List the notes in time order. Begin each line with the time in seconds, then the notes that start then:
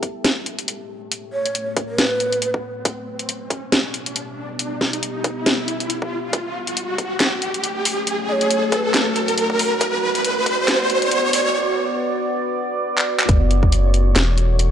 Already playing: A3 F#4 C#5, riser
0.03 kick, closed hi-hat
0.25 snare, closed hi-hat
0.46 closed hi-hat
0.59 closed hi-hat
0.68 closed hi-hat
1.12 closed hi-hat
1.33 C#5
1.46 closed hi-hat
1.55 closed hi-hat
1.77 kick, closed hi-hat
1.89 A#4
1.98 B4, snare, closed hi-hat
2.20 closed hi-hat
2.33 closed hi-hat
2.42 closed hi-hat
2.54 kick
2.85 B3 G4 E5, kick, closed hi-hat
3.19 closed hi-hat
3.29 closed hi-hat
3.50 kick, closed hi-hat
3.72 snare, closed hi-hat
3.94 closed hi-hat
4.06 closed hi-hat
4.16 closed hi-hat
4.59 closed hi-hat
4.81 snare
4.93 closed hi-hat
5.03 closed hi-hat
5.24 kick, closed hi-hat
5.46 snare, closed hi-hat
5.68 closed hi-hat
5.80 closed hi-hat
5.90 closed hi-hat
6.02 kick
6.33 A3 F#4 C#5, kick, closed hi-hat
6.67 closed hi-hat
6.77 closed hi-hat
6.98 kick, closed hi-hat
7.20 snare, clap, closed hi-hat
7.42 closed hi-hat
7.54 closed hi-hat
7.64 closed hi-hat
7.85 open hi-hat
8.07 closed hi-hat
8.29 C#5 D#5
8.41 closed hi-hat
8.51 closed hi-hat
8.72 B4 C#5, kick, closed hi-hat
8.94 snare, clap, closed hi-hat
9.16 closed hi-hat
9.28 closed hi-hat
9.38 closed hi-hat
9.50 kick
9.59 open hi-hat
9.81 B3 D5, kick, closed hi-hat
10.15 closed hi-hat
10.25 closed hi-hat
10.46 kick, closed hi-hat
10.68 snare, clap, closed hi-hat
10.90 closed hi-hat
11.02 closed hi-hat
11.11 closed hi-hat
11.33 open hi-hat
12.98 clap
13.19 clap
13.29 F#1 A3 F#4 C#5, kick, closed hi-hat
13.51 closed hi-hat
13.63 kick
13.72 closed hi-hat
13.94 closed hi-hat
14.16 E1, snare, clap, closed hi-hat
14.38 closed hi-hat
14.59 closed hi-hat